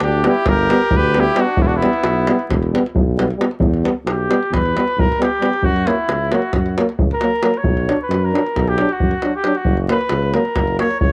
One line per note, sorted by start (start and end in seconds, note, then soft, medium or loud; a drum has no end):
0.00 0.26 D2 medium
0.00 0.25 D4 medium
0.00 0.25 G4 medium
0.00 davul high medium
0.12 davul high soft
0.24 0.34 G3 medium
0.24 0.34 B3 medium
0.24 0.50 G4 medium
0.24 davul high medium
0.28 0.51 E4 medium
0.35 davul high soft
0.46 0.71 G1 loud
0.46 0.96 G4 loud
0.46 0.98 A#4 loud
0.46 davul high medium
0.46 davul low medium
0.59 davul high soft
0.70 0.80 G3 medium
0.70 0.80 B3 medium
0.70 davul high medium
0.82 davul high soft
0.91 1.29 D2 medium
0.91 davul low medium
0.96 1.22 G4 medium
0.96 1.22 B4 loud
1.04 davul high soft
1.14 1.24 G3 medium
1.14 1.24 B3 medium
1.14 davul high medium
1.20 1.43 E4 medium
1.20 1.42 G4 loud
1.35 1.44 G3 medium
1.35 1.46 B3 medium
1.35 davul high medium
1.40 1.64 D4 medium
1.40 1.64 F#4 medium
1.57 1.83 E1 loud
1.57 davul low medium
1.62 1.69 B3 loud
1.62 1.68 E4 medium
1.67 1.79 D4 medium
1.67 1.78 F#4 medium
1.67 davul high soft
1.76 2.52 B3 medium
1.76 2.51 E4 medium
1.81 1.90 G3 medium
1.81 1.92 B3 medium
1.81 davul high medium
1.93 davul high soft
2.03 2.29 B1 medium
2.03 davul high medium
2.27 2.36 G3 medium
2.27 2.37 B3 medium
2.27 davul high medium
2.39 davul high soft
2.49 2.74 E1 loud
2.49 davul high medium
2.49 davul low medium
2.62 davul high soft
2.73 2.82 G3 medium
2.73 2.83 B3 medium
2.73 davul high medium
2.86 davul high soft
2.94 3.31 B1 medium
2.94 davul low medium
3.16 3.25 G3 medium
3.16 3.28 B3 medium
3.16 davul high medium
3.30 davul high soft
3.37 3.46 G3 soft
3.37 3.49 B3 medium
3.37 davul high medium
3.51 davul high soft
3.59 3.85 E2 loud
3.59 davul low medium
3.74 davul high soft
3.83 3.92 G3 medium
3.83 3.93 B3 medium
3.83 davul high medium
4.05 4.30 B1 medium
4.05 4.55 G4 medium
4.05 davul high medium
4.29 4.38 G3 soft
4.29 4.39 B3 medium
4.29 davul high medium
4.43 davul high soft
4.51 4.76 E2 medium
4.51 5.01 B4 loud
4.51 davul high medium
4.51 davul low medium
4.65 davul high soft
4.75 4.84 G3 medium
4.75 4.85 B3 medium
4.75 davul high medium
4.88 davul high soft
4.96 5.09 B1 medium
4.96 5.24 A#4 medium
4.96 davul low medium
5.12 davul high soft
5.18 5.27 G3 soft
5.18 5.29 B3 medium
5.18 davul high medium
5.22 5.66 G4 medium
5.41 5.49 G3 medium
5.41 5.50 B3 medium
5.41 davul high medium
5.53 davul high soft
5.63 5.88 F#2 loud
5.63 5.88 F#4 loud
5.63 davul low medium
5.76 davul high soft
5.86 5.95 F#3 medium
5.86 5.95 A#3 medium
5.86 6.36 E4 medium
5.86 davul high medium
6.08 6.33 C#2 medium
6.08 davul high medium
6.32 6.41 F#3 medium
6.32 6.41 A#3 medium
6.32 6.55 F#4 medium
6.32 davul high medium
6.42 davul high soft
6.53 6.79 F#2 medium
6.53 6.78 F#4 medium
6.53 davul high medium
6.53 davul low medium
6.66 davul high soft
6.78 6.86 F#3 medium
6.78 6.87 A#3 medium
6.78 davul high medium
6.89 davul high soft
6.99 7.11 C#2 medium
6.99 davul low medium
7.11 7.59 A#4 loud
7.11 davul high soft
7.21 7.31 F#3 soft
7.21 7.31 A#3 medium
7.21 davul high medium
7.43 7.52 F#3 medium
7.43 7.52 A#3 medium
7.43 davul high medium
7.54 8.01 C#5 medium
7.54 davul high soft
7.64 7.89 B1 loud
7.64 davul low medium
7.77 davul high soft
7.88 7.96 F#3 medium
7.88 7.97 D4 medium
7.88 davul high medium
8.02 8.26 B4 medium
8.09 8.34 F#2 medium
8.09 davul high medium
8.24 8.70 A#4 medium
8.33 8.43 F#3 medium
8.33 8.42 D4 medium
8.33 davul high medium
8.46 davul high soft
8.56 8.81 B1 medium
8.56 davul high medium
8.56 davul low medium
8.68 8.94 G4 medium
8.68 davul high soft
8.78 8.88 F#3 medium
8.78 8.88 D4 medium
8.78 davul high medium
8.89 9.35 F#4 medium
8.89 davul high soft
9.00 9.13 F#2 medium
9.00 davul low medium
9.11 davul high soft
9.22 9.32 F#3 soft
9.22 9.32 D4 medium
9.22 davul high medium
9.36 9.58 G4 medium
9.44 9.53 F#3 medium
9.44 9.54 D4 medium
9.44 davul high medium
9.55 9.78 F#4 medium
9.55 davul high soft
9.65 9.90 F#1 loud
9.65 davul low medium
9.77 davul high soft
9.89 9.98 F#3 medium
9.89 9.98 A#3 medium
9.89 10.35 B4 medium
9.89 davul high medium
10.01 davul high soft
10.09 10.35 C#2 medium
10.09 davul high medium
10.22 davul high soft
10.34 10.43 F#3 medium
10.34 10.42 A#3 medium
10.34 10.79 A#4 medium
10.34 davul high medium
10.45 davul high soft
10.55 10.80 F#1 medium
10.55 davul high medium
10.55 davul low medium
10.67 davul high soft
10.79 10.88 F#3 soft
10.79 10.88 A#3 medium
10.79 10.99 C#5 loud
10.79 davul high medium
10.91 davul high soft
11.00 11.12 C#2 medium
11.00 11.12 C#5 medium
11.00 davul low medium